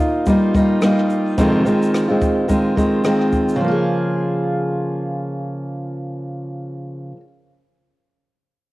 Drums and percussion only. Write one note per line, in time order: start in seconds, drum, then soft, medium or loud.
0.26 kick medium
0.26 shaker medium
0.55 kick medium
0.55 shaker soft
0.82 cross-stick medium
0.82 shaker soft
0.98 cross-stick soft
1.10 shaker soft
1.38 kick loud
1.38 shaker medium
1.66 shaker soft
1.82 shaker soft
1.94 cross-stick medium
1.94 shaker soft
2.22 kick medium
2.22 shaker soft
2.49 kick medium
2.49 shaker medium
2.77 kick medium
2.77 shaker soft
3.04 cross-stick medium
3.04 shaker soft
3.20 cross-stick soft
3.32 kick medium
3.32 shaker soft
3.48 shaker soft